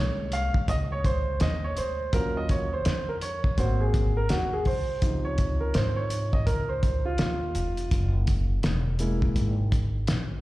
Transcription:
0.00 0.52 C2 medium
0.00 2.09 G#3 medium
0.00 2.09 A#3 soft
0.00 2.09 C#4 medium
0.00 0.35 C#5 loud
0.32 0.70 F5 loud
0.32 closed hi-hat medium
0.54 muted upright bass stroke soft
0.54 kick medium
0.68 1.37 C#2 medium
0.68 0.74 D#5 loud
0.68 kick medium
0.68 closed hi-hat medium
0.92 1.06 C#5 medium
1.05 1.42 C5 loud
1.05 kick loud
1.05 closed hi-hat medium
1.40 1.75 D#2 medium
1.40 1.64 D#5 loud
1.40 snare loud
1.40 closed hi-hat medium
1.64 1.78 C#5 medium
1.77 2.12 D2 medium
1.77 2.14 C5 medium
1.77 closed hi-hat medium
2.13 2.82 D#2 loud
2.13 2.64 F#3 medium
2.13 2.65 C#4 soft
2.13 2.65 F4 medium
2.13 2.37 A#4 medium
2.13 kick loud
2.13 closed hi-hat medium
2.37 2.50 D#5 medium
2.49 2.73 C#5 medium
2.49 kick medium
2.49 closed hi-hat medium
2.73 3.06 C5 medium
2.85 3.54 F2 medium
2.85 snare loud
2.85 closed hi-hat medium
3.09 3.14 A#4 medium
3.21 3.59 C#5 medium
3.21 closed hi-hat medium
3.44 kick medium
3.58 4.27 G#1 loud
3.58 4.09 A#3 medium
3.58 4.09 C4 medium
3.58 4.10 F#4 medium
3.58 3.81 C5 medium
3.58 kick loud
3.58 closed hi-hat medium
3.81 4.18 G#4 medium
3.94 kick loud
3.94 closed hi-hat medium
4.17 4.31 A#4 medium
4.29 4.65 D#2 medium
4.29 4.53 F#4 medium
4.29 snare loud
4.29 closed hi-hat medium
4.53 4.66 G#4 medium
4.65 5.00 C2 medium
4.65 5.21 C5 medium
4.65 kick medium
4.65 open hi-hat soft
5.02 5.71 C#2 medium
5.02 7.88 C3 soft
5.02 7.88 F3 medium
5.02 7.88 D#4 medium
5.02 kick loud
5.02 closed hi-hat medium
5.25 5.62 C#5 medium
5.38 kick medium
5.38 closed hi-hat medium
5.60 5.75 A#4 medium
5.74 6.44 G#2 medium
5.74 5.98 C5 medium
5.74 snare loud
5.74 closed hi-hat medium
5.96 6.34 C#5 medium
6.10 closed hi-hat medium
6.33 6.47 D#5 medium
6.33 kick medium
6.46 7.16 C#2 medium
6.46 6.70 A#4 medium
6.46 kick medium
6.46 closed hi-hat medium
6.69 7.06 C5 medium
6.83 kick medium
6.83 closed hi-hat medium
7.05 8.10 F4 medium
7.18 7.54 D#2 loud
7.18 snare loud
7.18 closed hi-hat medium
7.55 7.90 F1 medium
7.55 closed hi-hat medium
7.77 closed hi-hat soft
7.91 8.60 F#1 medium
7.91 kick loud
7.91 closed hi-hat medium
8.27 kick medium
8.27 closed hi-hat medium
8.63 9.33 E1 medium
8.63 snare loud
8.63 closed hi-hat medium
8.99 9.51 G#3 medium
8.99 9.51 A#3 medium
8.99 9.51 E4 medium
8.99 closed hi-hat medium
9.22 kick loud
9.36 10.05 G#1 medium
9.36 kick medium
9.36 closed hi-hat medium
9.72 kick loud
9.72 closed hi-hat medium
10.07 10.41 A#1 medium
10.07 snare loud
10.07 closed hi-hat medium

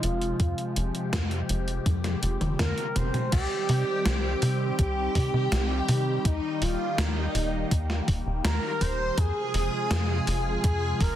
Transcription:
0.00 0.33 F1 medium
0.00 3.29 C3 medium
0.00 3.29 F3 medium
0.00 3.29 G#3 medium
0.00 0.37 F4 medium
0.00 0.77 F4 medium
0.00 closed hi-hat medium
0.22 closed hi-hat soft
0.40 0.55 F2 medium
0.40 3.29 G4 medium
0.40 kick loud
0.40 closed hi-hat medium
0.58 closed hi-hat soft
0.76 0.91 F1 medium
0.76 closed hi-hat loud
0.95 closed hi-hat soft
1.13 1.43 F2 medium
1.13 kick loud
1.13 snare loud
1.13 closed hi-hat medium
1.31 closed hi-hat soft
1.49 1.79 F1 medium
1.49 closed hi-hat medium
1.68 closed hi-hat soft
1.86 2.16 F2 medium
1.86 kick loud
1.86 closed hi-hat medium
1.86 high tom medium
2.04 snare soft
2.04 closed hi-hat soft
2.04 high tom medium
2.23 2.38 F1 medium
2.23 closed hi-hat medium
2.41 2.56 F1 medium
2.41 closed hi-hat soft
2.41 mid tom medium
2.59 2.74 F2 medium
2.59 2.97 A#4 loud
2.59 kick loud
2.59 snare loud
2.59 closed hi-hat medium
2.59 mid tom medium
2.78 closed hi-hat soft
2.96 3.11 F1 loud
2.96 3.32 C5 loud
2.96 closed hi-hat medium
2.96 mid tom loud
3.14 closed hi-hat soft
3.14 mid tom medium
3.32 3.47 C2 loud
3.32 9.14 D#3 medium
3.32 9.14 G3 medium
3.32 6.22 C4 medium
3.32 4.75 G4 loud
3.32 9.14 G4 medium
3.32 4.75 G4 loud
3.32 kick loud
3.32 closed hi-hat medium
3.32 crash loud
3.69 3.84 C3 medium
3.69 open hi-hat medium
4.06 4.36 C2 medium
4.06 snare loud
4.06 closed hi-hat loud
4.42 4.72 C3 medium
4.42 open hi-hat medium
4.79 5.09 C2 medium
4.79 6.21 G4 loud
4.79 6.27 G4 loud
4.79 kick loud
4.79 closed hi-hat loud
5.15 5.30 C3 loud
5.15 kick loud
5.15 open hi-hat medium
5.34 5.49 C3 medium
5.52 5.82 C2 loud
5.52 snare loud
5.52 closed hi-hat medium
5.89 6.18 C3 medium
5.89 open hi-hat medium
6.25 6.40 D#2 loud
6.25 9.15 A#3 medium
6.25 6.63 D#4 medium
6.25 6.59 D#4 loud
6.25 kick loud
6.25 closed hi-hat medium
6.62 6.77 D#1 medium
6.62 7.00 F4 medium
6.62 6.96 F4 medium
6.62 open hi-hat medium
6.98 7.28 D#2 medium
6.98 7.71 D#4 medium
6.98 7.68 D#4 medium
6.98 snare loud
6.98 closed hi-hat loud
7.35 7.65 D#1 medium
7.35 open hi-hat medium
7.71 8.01 D#2 medium
7.71 kick loud
7.71 closed hi-hat loud
7.90 snare soft
8.08 8.23 D#1 medium
8.08 kick loud
8.08 open hi-hat medium
8.26 8.41 D#1 medium
8.45 8.60 D#2 medium
8.45 8.83 A#4 loud
8.45 8.79 A#4 loud
8.45 snare loud
8.45 closed hi-hat medium
8.81 9.11 D#1 medium
8.81 9.19 C5 loud
8.81 9.16 C5 loud
8.81 kick medium
8.81 open hi-hat medium
9.18 9.33 F2 loud
9.18 11.16 C3 medium
9.18 11.16 F3 medium
9.18 11.16 G#3 medium
9.18 11.16 F4 medium
9.18 10.64 G#4 loud
9.18 10.61 G#4 loud
9.18 kick loud
9.18 closed hi-hat medium
9.54 9.69 F1 medium
9.54 open hi-hat medium
9.91 10.21 F2 medium
9.91 snare loud
9.91 closed hi-hat medium
10.27 10.57 F1 medium
10.27 open hi-hat medium
10.64 10.94 F2 medium
10.64 11.02 G#4 loud
10.64 10.98 G#4 loud
10.64 kick loud
10.64 closed hi-hat loud
11.01 11.16 F1 loud
11.01 11.16 A#4 loud
11.01 kick loud
11.01 open hi-hat medium

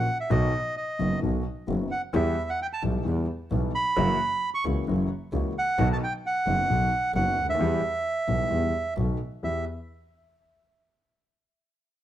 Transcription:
0.00 0.18 F#5 medium
0.20 0.31 E5 medium
0.30 0.50 B1 medium
0.30 0.51 B1 medium
0.30 0.50 B2 medium
0.30 0.50 D#3 medium
0.30 0.50 F#3 medium
0.30 0.50 B3 medium
0.30 0.50 F#4 medium
0.30 0.76 D#5 medium
0.77 1.20 D#5 medium
0.99 1.19 F#1 medium
0.99 1.19 F#2 medium
0.99 1.19 D#3 soft
0.99 1.19 F#3 soft
0.99 1.19 B3 soft
0.99 1.19 F#4 medium
1.22 1.42 B1 medium
1.22 1.42 B2 medium
1.22 1.42 D#3 soft
1.22 1.42 F#3 soft
1.22 1.42 B3 soft
1.22 1.42 F#4 medium
1.67 1.88 F#1 medium
1.67 1.87 F#2 medium
1.67 1.87 D#3 soft
1.67 1.88 F#3 soft
1.67 1.88 B3 soft
1.67 1.88 F#4 medium
1.91 2.02 F#5 medium
2.13 2.33 E2 loud
2.13 2.34 E2 medium
2.13 2.33 E3 medium
2.13 2.33 G3 medium
2.13 2.33 B3 medium
2.13 2.33 G4 medium
2.13 2.50 E5 medium
2.50 2.60 F#5 medium
2.62 2.67 G5 loud
2.73 2.83 A5 loud
2.82 3.02 B1 medium
2.82 3.02 B2 medium
2.82 3.02 E3 soft
2.82 3.02 G3 soft
2.82 3.02 B3 soft
2.82 3.02 G4 medium
3.05 3.25 E2 medium
3.05 3.25 E3 medium
3.05 3.25 G3 soft
3.05 3.25 B3 soft
3.05 3.25 G4 medium
3.51 3.70 B1 medium
3.51 3.71 B1 medium
3.51 3.70 B2 medium
3.51 3.70 E3 soft
3.51 3.70 G3 soft
3.51 3.70 B3 soft
3.51 3.70 G4 medium
3.75 4.50 B5 loud
3.96 4.16 F#1 medium
3.96 4.16 F#2 medium
3.96 4.16 E3 medium
3.96 4.16 F#3 medium
3.96 4.16 A#3 medium
3.96 4.16 C#4 medium
3.96 4.16 F#4 medium
4.55 4.64 C#6 loud
4.65 4.84 C#2 medium
4.65 4.84 C#3 medium
4.65 4.84 E3 soft
4.65 4.84 A#3 soft
4.65 4.84 C#4 soft
4.65 4.84 F#4 medium
4.88 5.07 F#1 medium
4.88 5.07 F#2 medium
4.88 5.07 E3 medium
4.88 5.07 F#3 medium
4.88 5.07 A#3 soft
4.88 5.07 C#4 soft
4.88 5.07 F#4 medium
5.32 5.52 C#2 medium
5.32 5.52 C#3 medium
5.32 5.52 E3 soft
5.32 5.52 A#3 soft
5.32 5.52 C#4 soft
5.32 5.52 F#4 medium
5.58 5.89 F#5 loud
5.78 5.97 B1 medium
5.78 5.97 B1 loud
5.78 5.97 B2 loud
5.78 5.97 D#3 medium
5.78 5.97 F#3 medium
5.78 5.98 B3 medium
5.78 5.98 F#4 medium
5.93 5.97 A5 loud
6.04 6.13 G5 loud
6.26 7.12 F#5 loud
6.46 6.65 F#1 medium
6.46 6.65 F#2 medium
6.46 6.65 D#3 medium
6.46 6.65 F#3 soft
6.46 6.65 B3 soft
6.46 6.65 F#4 medium
6.69 6.88 B1 medium
6.69 6.88 B2 medium
6.69 6.88 D#3 soft
6.69 6.88 F#3 soft
6.69 6.88 B3 soft
6.69 6.88 F#4 medium
7.15 7.34 F#1 medium
7.15 7.34 F#2 medium
7.15 7.34 D#3 medium
7.15 7.34 F#3 soft
7.15 7.34 B3 soft
7.15 7.34 F#4 medium
7.15 7.47 F#5 loud
7.37 7.60 D2 medium
7.43 7.48 C#2 medium
7.48 7.54 D2 medium
7.48 8.94 E5 medium
7.54 7.60 D#2 medium
7.59 7.79 E2 medium
7.59 7.79 E3 medium
7.59 7.79 G3 medium
7.59 7.79 B3 medium
7.59 7.79 G4 medium
8.27 8.47 B1 medium
8.27 8.48 B1 medium
8.27 8.47 B2 medium
8.27 8.47 E3 soft
8.27 8.47 G3 soft
8.27 8.47 B3 soft
8.27 8.47 G4 medium
8.50 8.70 E2 medium
8.50 8.71 E2 medium
8.50 8.70 E3 medium
8.50 8.70 G3 soft
8.50 8.71 B3 soft
8.50 8.71 G4 medium
8.96 9.16 B1 medium
8.96 9.17 B1 medium
8.96 9.17 B2 medium
8.96 9.16 D#3 soft
8.96 9.16 A3 soft
8.96 9.17 B3 soft
8.96 9.17 F#4 medium
9.43 9.62 E2 medium
9.43 9.63 E2 medium
9.43 9.63 B3 medium
9.43 9.62 E4 soft
9.43 9.62 G4 medium
9.43 9.65 E5 medium

